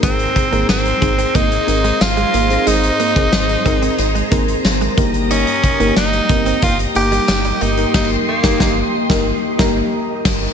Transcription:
<<
  \new Staff \with { instrumentName = "String machine" } { \time 4/4 \key ees \mixolydian \tempo 4 = 91 << { bes''1~ | bes''1~ | bes''2.~ bes''8 c'''8~ | c'''1 | } \\ { <aes' c''>1~ | <aes' c''>2.~ <aes' c''>8 <g' ees''>8~ | <g' ees''>1~ | <g' ees''>1 | } >> }
  \new Staff \with { instrumentName = "FM electric piano" } { \time 4/4 \key ees \mixolydian <c' ees' aes' bes'>8 r16 <c' ees' aes' bes'>8 r16 <c' ees' aes' c''>8. r16 <c' ees' aes' bes'>4 r16 <c' ees' aes' c''>16 | <c' ees' aes' c''>8 r16 <c' ees' aes' bes'>8 r16 <c' ees' aes' bes'>8. r16 <c' ees' aes' bes'>4 <bes ees' g' bes'>8~ | <bes ees' g' bes'>8 r16 <bes ees' g' bes'>8 r16 <bes ees' g' bes'>8. r16 <bes ees' g' bes'>4 r16 <bes ees' g' bes'>16 | <bes ees' g' bes'>8 r16 <bes ees' g' bes'>16 <bes ees' g' bes'>8 r16 <bes ees' g' bes'>8 r16 <bes ees' g' bes' bes''>8 r4 | }
  \new Staff \with { instrumentName = "FM electric piano" } { \clef bass \time 4/4 \key ees \mixolydian aes,4. r2 r8 | aes,4. r2 g,8~ | g,4 r2 r8 g,8 | r1 | }
  \new Staff \with { instrumentName = "Tenor saxophone" } { \time 4/4 \key ees \mixolydian c'4 c'4 ees'4 f'4 | ees'2. r4 | des'4 ees'4 f'8 g'4 ees'8 | ees'8 bes4 r2 r8 | }
  \new Staff \with { instrumentName = "Clean electric guitar" } { \time 4/4 \key ees \mixolydian aes16 r8 bes16 r8 c'16 c'16 bes16 r8 aes16 r16 aes16 bes16 r16 | aes16 r16 bes16 r8. c'16 c'16 r16 aes16 bes16 r8 aes16 bes16 r16 | ees'16 r8 bes16 r8 c'16 c'16 bes16 r8 g16 r16 g16 bes16 r16 | r1 | }
  \new Staff \with { instrumentName = "Analog synth bass" } { \clef bass \time 4/4 \key ees \mixolydian aes,,8 r16 aes,,16 aes,,8 aes,,8 aes,,8 aes,,8 aes,,8 aes,,8 | aes,,8 r16 aes,,16 aes,,8 aes,,8 aes,,8 aes,,8 aes,,8 g,,8~ | g,,8 r16 g,,16 g,,8 g,,8 g,,8 g,,8 g,,8 g,,8 | g,,8 r16 g,,16 g,,8 r16 g,,8 r16 g,,8 r8 g,,8 | }
  \new DrumStaff \with { instrumentName = "Drums" } \drummode { \time 4/4 <hh bd>16 hh16 <hh bd>16 hh16 <sn tamb>16 hh16 <hh bd>16 hh16 <hh bd>16 hh16 hh16 hh16 <sn tamb>16 hh16 hh16 hh16 | hh16 hh16 hh16 <hh bd>16 <sn tamb>16 hh16 <hh bd>16 hh16 hh16 hh16 <hh bd>16 hh16 <sn tamb>16 hh16 <hh bd>16 hh16 | hh16 hh16 <hh bd>16 hh16 <sn tamb>16 hh16 <hh bd>16 hh16 <hh bd>16 hh16 hh16 hh16 <sn tamb>16 hh16 hh16 hh16 | <cymc bd sn>8. <bd sn>16 <bd sn>8. <bd sn>16 r8 <bd sn>8 r8 <cymc bd sn>8 | }
>>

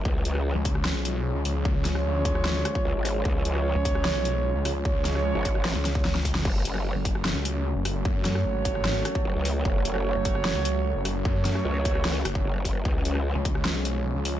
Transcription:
<<
  \new Staff \with { instrumentName = "Brass ensemble" } { \time 4/4 \key fis \minor \tempo 4 = 150 r2. r8. <gis eis' cis''>16~ | <gis eis' cis''>2.~ <gis eis' cis''>8. <gis eis' cis''>16~ | <gis eis' cis''>2.~ <gis eis' cis''>8. <gis eis' cis''>16~ | <gis eis' cis''>2~ <gis eis' cis''>8. <gis eis' cis''>8 r8. |
r2. r8. <a fis' cis''>16~ | <a fis' cis''>2.~ <a fis' cis''>8. <a fis' cis''>16~ | <a fis' cis''>2.~ <a fis' cis''>8. <a fis' cis''>16~ | <a fis' cis''>2~ <a fis' cis''>8. <a fis' cis''>8 r8. |
r2. r8. <gis cis''>16 | }
  \new Staff \with { instrumentName = "Analog synth pad" } { \clef bass \time 4/4 \key fis \minor << { cis'1~ | cis'1~ | cis'1~ | cis'1 |
cis'1~ | cis'1~ | cis'1~ | cis'1~ |
cis'1 | } \\ { <eis gis>1~ | <eis gis>1~ | <eis gis>1~ | <eis gis>1 |
<fis a>1~ | <fis a>1~ | <fis a>1~ | <fis a>1 |
<eis gis>1 | } >> }
  \new Staff \with { instrumentName = "Detuned saw bass" } { \clef bass \time 4/4 \key fis \minor r4 r16 cis,4 b,,4 cis,16 cis,8 | cis,4 d,4. r4. | r4 r16 cis,4 b,,4 cis,16 cis,8 | cis,4 cis,16 r4 cis,4 cis,8. |
r4 r16 fis,,4 cis,4 fis,,16 fis,,8 | fis,4 gis,,4. r4. | r4 r16 fis,,4 cis,4 fis,,16 fis,,8 | fis,4 r4. fis,,8 r4 |
r4 r16 cis,4 b,,4 cis,16 cis,8 | }
  \new Staff \with { instrumentName = "Wobble bass" } { \clef bass \time 4/4 \key fis \minor cis,8 cis,8. r2 r8. | r2. cis,16 gis,,8. | cis,8 cis,8. r2 r8. | r4 r16 gis,,4 r4. r16 |
fis,,8 fis,,8. r2 r8. | r2. fis,,16 cis,8. | fis,,8 fis,,8. r2 r8. | r4 cis,4. r8 fis,,4 |
cis,8 cis,8. r2 r8. | }
  \new DrumStaff \with { instrumentName = "Drums" } \drummode { \time 4/4 bd8 hh16 ss16 r8 <hh bd>16 ss16 sn8 hh8 r8 hho8 | bd8 <hh sn>16 ss16 r8 <hh bd>16 ss16 sn8 <hh ss>16 bd16 r8 <hho ss>8 | bd8 hh16 ss16 r8 <hh bd>16 ss16 sn8 hh8 r8 <hho ss>8 | bd8 <hh sn>16 ss16 r8 <hh bd>16 ss16 sn8 <hh sn>16 bd16 sn16 sn16 <hho bd>16 sn16 |
<cymc bd>8 hh16 ss16 r8 <hh bd>16 ss16 sn8 hh8 r8 <hho ss>8 | bd8 <hh sn>16 ss16 r8 <hh bd>16 ss16 sn8 <hh ss>16 bd16 r8 hho8 | bd8 hh16 ss16 r8 <hh bd>16 ss16 sn8 hh8 r8 <hho ss>8 | bd8 <hh sn>16 ss16 r8 <hh bd>16 ss16 sn8 <hh ss>16 bd16 r8 <hho bd>8 |
bd8 hh16 ss16 r8 <hh bd>16 ss16 sn8 hh8 r8 hho8 | }
>>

